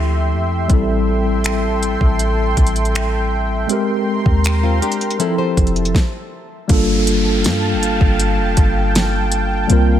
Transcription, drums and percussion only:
0.70 kick, closed hi-hat
1.44 finger snap, closed hi-hat
1.83 closed hi-hat
2.01 kick
2.19 closed hi-hat
2.57 kick, closed hi-hat
2.67 closed hi-hat
2.76 closed hi-hat
2.85 closed hi-hat
2.95 finger snap, closed hi-hat
3.69 closed hi-hat
4.26 kick
4.44 finger snap, closed hi-hat
4.82 closed hi-hat
4.92 closed hi-hat
5.01 closed hi-hat
5.11 closed hi-hat
5.20 closed hi-hat
5.57 kick, closed hi-hat
5.67 closed hi-hat
5.76 closed hi-hat
5.85 closed hi-hat
5.95 kick, snare
6.69 kick, closed hi-hat
7.07 closed hi-hat
7.44 snare, closed hi-hat
7.83 closed hi-hat
8.01 kick
8.19 closed hi-hat
8.57 kick, closed hi-hat
8.95 snare, closed hi-hat
9.32 closed hi-hat
9.70 closed hi-hat

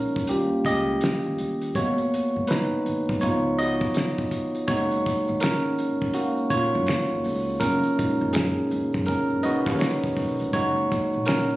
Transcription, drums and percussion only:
0.16 kick
0.27 closed hi-hat
0.65 kick, closed hi-hat
1.01 snare, closed hi-hat
1.38 closed hi-hat
1.61 closed hi-hat
1.75 kick, closed hi-hat
1.98 closed hi-hat
2.14 closed hi-hat
2.47 snare, closed hi-hat
2.86 closed hi-hat
3.09 kick
3.21 kick, closed hi-hat
3.59 closed hi-hat
3.81 kick
3.94 snare, closed hi-hat
4.18 kick
4.31 kick, closed hi-hat
4.55 closed hi-hat
4.67 kick, closed hi-hat, shaker
4.91 closed hi-hat, shaker
5.06 kick, closed hi-hat, shaker
5.27 shaker
5.40 finger snap, snare, closed hi-hat, shaker
5.65 shaker
5.77 closed hi-hat, shaker
6.00 kick, shaker
6.13 closed hi-hat, shaker
6.37 shaker
6.50 kick, closed hi-hat
6.73 shaker
6.87 finger snap, snare, closed hi-hat, shaker
7.10 shaker
7.24 open hi-hat, shaker
7.49 shaker
7.60 kick, closed hi-hat, shaker
7.83 closed hi-hat, shaker
7.99 kick, closed hi-hat, shaker
8.19 shaker
8.33 finger snap, snare, closed hi-hat, shaker
8.57 shaker
8.69 closed hi-hat, shaker
8.93 kick, shaker
9.06 kick, closed hi-hat, shaker
9.29 shaker
9.43 closed hi-hat
9.66 kick, shaker
9.79 finger snap, snare, closed hi-hat, shaker
10.03 kick, shaker
10.16 kick, open hi-hat, shaker
10.40 closed hi-hat, shaker
10.53 kick, closed hi-hat, shaker
10.77 shaker
10.92 kick, closed hi-hat, shaker
11.13 shaker
11.25 finger snap, snare, closed hi-hat, shaker
11.50 shaker

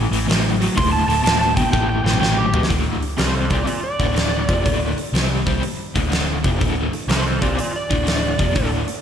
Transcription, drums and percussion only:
0.13 open hi-hat
0.30 snare, open hi-hat
0.62 open hi-hat
0.78 kick, open hi-hat
1.10 open hi-hat
1.26 snare, open hi-hat
1.57 kick, open hi-hat
1.73 kick
2.06 snare
2.13 mid tom
2.23 snare
2.54 floor tom
2.63 snare
2.70 kick, open hi-hat
3.02 open hi-hat
3.18 snare, open hi-hat
3.50 kick, open hi-hat
3.67 open hi-hat
4.00 kick, open hi-hat
4.16 snare, open hi-hat
4.49 kick, open hi-hat
4.66 kick, open hi-hat
4.98 open hi-hat
5.15 snare, open hi-hat
5.47 kick, open hi-hat
5.63 open hi-hat
5.96 kick, open hi-hat
6.12 snare, open hi-hat
6.44 kick, open hi-hat
6.61 kick, open hi-hat
6.93 open hi-hat
7.09 snare, open hi-hat
7.42 kick, open hi-hat
7.59 open hi-hat
7.91 kick, open hi-hat
8.07 snare, open hi-hat
8.39 kick, open hi-hat
8.55 kick, open hi-hat
8.88 open hi-hat

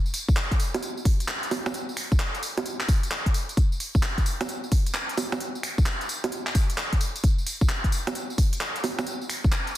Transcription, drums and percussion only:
0.06 tambourine
0.14 open hi-hat, tambourine
0.29 kick, tambourine
0.37 clap, closed hi-hat, tambourine
0.51 kick, closed hi-hat, tambourine
0.60 open hi-hat, tambourine
0.74 closed hi-hat, tambourine, high bongo
0.83 closed hi-hat, tambourine
0.97 tambourine
1.05 kick, open hi-hat, tambourine
1.20 closed hi-hat, tambourine
1.28 clap, tambourine
1.43 closed hi-hat, tambourine
1.51 open hi-hat, tambourine, high bongo
1.66 closed hi-hat, tambourine, high bongo
1.74 closed hi-hat, tambourine
1.89 tambourine
1.97 finger snap, open hi-hat, tambourine
2.12 kick, tambourine
2.20 clap, closed hi-hat, tambourine
2.35 closed hi-hat, tambourine
2.43 open hi-hat, tambourine
2.58 closed hi-hat, tambourine, high bongo
2.66 closed hi-hat, tambourine
2.80 finger snap, clap, tambourine
2.89 kick, open hi-hat, tambourine
3.03 closed hi-hat, tambourine
3.11 clap, tambourine
3.26 kick, closed hi-hat, tambourine
3.34 open hi-hat, tambourine
3.49 closed hi-hat, tambourine
3.57 kick, closed hi-hat, tambourine
3.72 tambourine
3.80 open hi-hat, tambourine
3.95 kick, tambourine
4.03 clap, closed hi-hat, tambourine
4.18 kick, closed hi-hat, tambourine
4.26 open hi-hat, tambourine
4.41 closed hi-hat, tambourine, high bongo
4.49 closed hi-hat, tambourine
4.64 tambourine
4.72 kick, open hi-hat, tambourine
4.86 closed hi-hat, tambourine
4.95 clap, tambourine
5.09 closed hi-hat, tambourine
5.17 open hi-hat, tambourine, high bongo
5.32 closed hi-hat, tambourine, high bongo
5.40 closed hi-hat, tambourine
5.55 tambourine
5.63 finger snap, open hi-hat, tambourine
5.78 kick, tambourine
5.86 clap, closed hi-hat, tambourine
6.01 closed hi-hat, tambourine
6.09 open hi-hat, tambourine
6.24 closed hi-hat, tambourine, high bongo
6.32 closed hi-hat, tambourine
6.47 finger snap, clap, tambourine
6.55 kick, open hi-hat, tambourine
6.70 closed hi-hat, tambourine
6.78 clap, tambourine
6.93 kick, closed hi-hat, tambourine
7.01 open hi-hat, tambourine
7.16 closed hi-hat, tambourine
7.24 kick, closed hi-hat, tambourine
7.38 tambourine
7.46 open hi-hat, tambourine
7.61 kick, tambourine
7.69 clap, closed hi-hat, tambourine
7.84 kick, closed hi-hat, tambourine
7.92 open hi-hat, tambourine
8.07 closed hi-hat, tambourine, high bongo
8.15 closed hi-hat, tambourine
8.30 tambourine
8.38 kick, open hi-hat, tambourine
8.53 closed hi-hat, tambourine
8.61 clap, tambourine
8.76 closed hi-hat, tambourine
8.84 open hi-hat, tambourine, high bongo
8.99 closed hi-hat, tambourine, high bongo
9.07 closed hi-hat, tambourine
9.21 tambourine
9.29 finger snap, open hi-hat, tambourine
9.44 kick, tambourine
9.52 clap, closed hi-hat, tambourine
9.67 closed hi-hat, tambourine

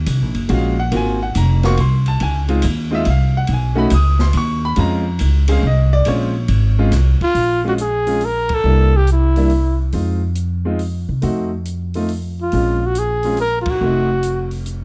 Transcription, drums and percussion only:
0.06 hi-hat pedal, ride
0.34 ride
0.49 ride
0.92 ride
1.35 hi-hat pedal, ride
1.63 snare, ride
1.77 ride
2.06 ride
2.20 ride
2.48 ride
2.62 hi-hat pedal, ride
3.05 ride
3.47 ride
3.90 hi-hat pedal, ride
4.19 snare
4.33 ride
4.76 ride
5.19 hi-hat pedal, ride
5.48 ride
6.05 ride
6.48 ride
6.92 snare, hi-hat pedal, ride
7.21 kick, ride
7.35 open hi-hat
7.78 closed hi-hat
8.07 open hi-hat
8.21 open hi-hat
8.49 kick, ride
9.07 closed hi-hat
9.36 open hi-hat
9.50 open hi-hat
9.92 open hi-hat
10.35 closed hi-hat
10.79 open hi-hat
11.22 open hi-hat
11.65 closed hi-hat
11.94 open hi-hat
12.09 open hi-hat
12.52 open hi-hat
12.95 closed hi-hat
13.23 open hi-hat
13.37 open hi-hat
13.66 kick, ride
14.23 closed hi-hat
14.51 open hi-hat
14.66 closed hi-hat

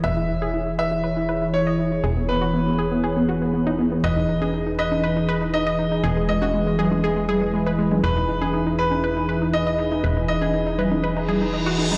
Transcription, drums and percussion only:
0.17 closed hi-hat
0.29 open hi-hat
0.54 closed hi-hat
0.67 closed hi-hat
1.29 open hi-hat
1.42 closed hi-hat
1.79 open hi-hat
1.92 closed hi-hat
2.17 closed hi-hat
2.29 open hi-hat
2.54 closed hi-hat
2.79 open hi-hat
3.04 closed hi-hat
3.17 closed hi-hat
3.29 open hi-hat
3.42 closed hi-hat
3.54 closed hi-hat
3.79 open hi-hat
3.92 closed hi-hat
4.29 open hi-hat
4.42 high conga
4.54 closed hi-hat
4.67 closed hi-hat
4.79 open hi-hat
4.92 closed hi-hat, high conga
5.29 open hi-hat
5.79 open hi-hat
6.04 closed hi-hat
6.17 closed hi-hat
6.29 open hi-hat
6.42 high conga
6.53 closed hi-hat
6.66 closed hi-hat
6.78 open hi-hat, low conga
6.91 closed hi-hat, high conga
7.16 closed hi-hat
7.28 open hi-hat, low conga
7.41 closed hi-hat
7.53 closed hi-hat
7.78 open hi-hat
7.91 closed hi-hat, high conga, low conga
8.17 closed hi-hat
8.29 open hi-hat
8.41 high conga
8.54 closed hi-hat
8.67 closed hi-hat
8.79 open hi-hat
8.91 high conga
9.04 closed hi-hat
9.17 closed hi-hat
9.29 open hi-hat
9.42 closed hi-hat
9.54 closed hi-hat
9.66 closed hi-hat
9.78 open hi-hat
9.92 closed hi-hat
10.03 closed hi-hat
10.16 closed hi-hat
10.28 open hi-hat
10.42 high conga
10.54 closed hi-hat
10.67 open hi-hat
10.79 open hi-hat, low conga
10.92 closed hi-hat, high conga
11.04 closed hi-hat
11.17 closed hi-hat
11.29 open hi-hat, low conga
11.54 closed hi-hat
11.67 closed hi-hat
11.79 open hi-hat
11.92 high conga, low conga

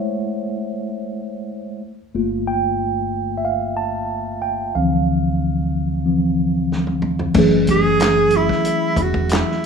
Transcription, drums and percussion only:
6.72 snare
6.87 high tom
7.02 mid tom
7.19 floor tom
7.34 kick, crash
7.67 kick, closed hi-hat
8.00 snare, clap, closed hi-hat
8.30 closed hi-hat
8.49 kick, snare
8.65 closed hi-hat
8.96 kick, closed hi-hat
9.14 kick
9.29 snare, clap, closed hi-hat
9.51 snare

